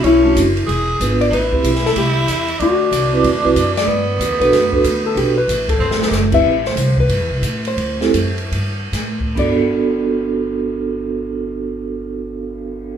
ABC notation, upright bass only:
X:1
M:4/4
L:1/8
Q:"Swing" 1/4=187
K:G
V:1 name="Upright bass" clef=bass
B,,,2 F,,,2 E,,,2 ^G,,,2 | A,,,2 B,,,2 C,,2 E,,2 | D,,2 C,,2 (3E,, D,, C,, F,,2 | G,,2 (3E,, D,, B,,, F,,2 D,,2 |
B,,,2 A,,,2 G,,,2 F,,,2 | A,,,2 C,,2 (3G,, E,, C,, A,,2 | D,,2 F,,2 G,,2 A,,2 | G,,,8- |
G,,,8 |]